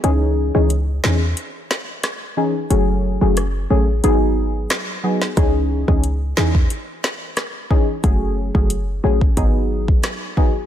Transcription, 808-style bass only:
\new Staff \with { instrumentName = "808-style bass" } { \clef bass \time 4/4 \key cis \minor \tempo 4 = 90 cis,8. cis,8. e,8 r2 | fis,,8. fis,,8. a,,8 gis,,4 r4 | cis,8. cis,8. e,8 r2 | fis,,8. fis,,8. a,,8 gis,,4 r4 | }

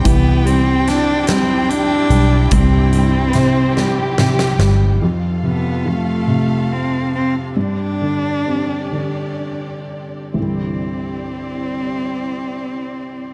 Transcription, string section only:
\new Staff \with { instrumentName = "String section" } { \time 6/8 \key c \major \tempo 4. = 47 << { <g' g''>2.~ | <g' g''>2. | <f' a' f''>2. | <d' g' d''>2. |
<c' e' g' d''>2. | } \\ { e'2.~ | e'2. | c2.~ | c2. |
r2. | } >> }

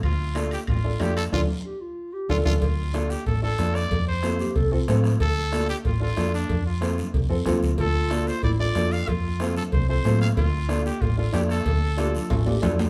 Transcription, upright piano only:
\new Staff \with { instrumentName = "Upright piano" } { \time 4/4 \key d \minor \tempo 4 = 186 r4 <d' f' a'>8 r4 <d' f' a'>8 <d' f' a'>8 r8 | <d' f' a'>8 r2 r8 <d' f' a'>8 <d' f' a'>8 | r4 <d' f' a'>8 r4 <d' f' a'>8 <d' f' a'>8 r8 | r4 <c' f' a'>8 r4 <c' f' a'>8 <c' f' a'>8 r8 |
r4 <d' f' a'>8 r4 <d' f' a'>8 <d' f' a'>8 r8 | r4 <c' f' a'>8 r4 <c' f' a'>8 <c' f' a'>8 r8 | r4 <d' f' a'>8 r4 <d' f' a'>8 <d' f' a'>8 r8 | r4 <c' f' a'>8 r4 <c' f' a'>8 <c' f' a'>8 r8 |
r4 <d' f' a'>8 r4 <d' f' a'>8 <d' f' a'>8 r8 | r4 <d' f' a'>8 r4 <d' f' a'>8 <d' f' a'>8 r8 | }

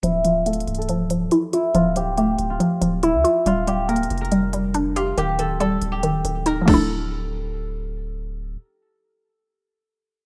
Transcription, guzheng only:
\new Staff \with { instrumentName = "Guzheng" } { \time 4/4 \key d \minor \tempo 4 = 140 e'8 f'8 a'8. a'4.~ a'16 e'8 | f'8 g'8 g'8. f'4~ f'16 e'4 | f'8 g'8 bes'8. bes'4.~ bes'16 f'8 | g'8 a'8 a'8. g'4~ g'16 bes'8 a'8~ |
a'2. r4 | r1 | }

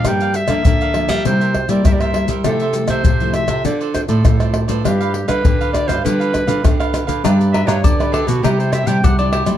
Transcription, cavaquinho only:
\new Staff \with { instrumentName = "Cavaquinho" } { \time 4/4 \key g \mixolydian \tempo 4 = 100 <g' bes' d'' f''>16 <bes' d'' f''>16 r16 <bes' d'' f''>16 <g' bes' d'' f''>16 <bes' d'' f''>8 <bes' d'' f''>16 <e' bes' c'' e''>16 <bes' c'' e''>16 r16 <bes' c'' e''>16 <e' bes' c'' e''>16 <bes' c'' e''>8 <bes' c'' e''>16 | <f' a' c'' e''>16 <a' c'' e''>16 r16 <a' c'' e''>16 <f' a' c'' e''>16 <a' c'' e''>8 <a' c'' e''>16 <f' a' c'' d''>16 <a' c'' d''>16 r16 <a' c'' d''>16 <f' a' c'' d''>16 <a' c'' d''>8 <a' c'' d''>16 | <d' g' b' f''>16 <g' b' f''>16 r16 <g' b' f''>16 <d' g' b' f''>16 <g' b' f''>8 <g' b' f''>16 <d' g' b' f''>16 <g' b' f''>16 r16 <g' b' f''>16 <d' g' b' f''>16 <g' b' f''>8 <g' b' f''>16 | \key g \major <d' g' b' d''>16 <g' b' d''>8 <d' g' b' d''>16 r16 <g' b' d''>16 <d' g' b' d''>16 <g' b' d''>16 <e' g' c'' d''>8 <e' g' c'' d''>16 <e' g' c'' d''>16 r16 <g' c'' d''>16 <e' g' c'' d''>16 <g' c'' d''>16 | }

